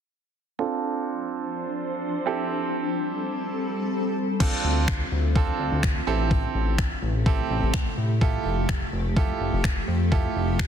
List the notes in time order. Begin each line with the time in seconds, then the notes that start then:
0.59 F3 C4 D4 F4 A4 C5
2.26 G3 C4 E4 G4 A4
4.40 D3 C4 D4 F4 A4, kick, crash
4.64 D2
4.88 finger snap, kick
5.12 D2
5.35 C4 D4 F4 A4, kick
5.59 D2
5.72 D2
5.83 finger snap, kick
6.07 A1 C3 A3 C4 E4 G4 A4
6.31 kick
6.55 A1
6.78 finger snap, kick
7.02 A1
7.26 C4 E4 G4 A4, kick
7.50 A1
7.63 A1
7.74 finger snap, kick
7.98 A2
8.21 F3 A3 E4 F4 G4 A4, kick
8.45 F1
8.69 finger snap, kick
8.93 F1
9.16 E4 F4 G4 A4, kick
9.40 F1
9.53 F1
9.64 finger snap, kick
9.88 F2
10.11 E4 F4 G4 A4, kick
10.36 F1
10.59 finger snap, kick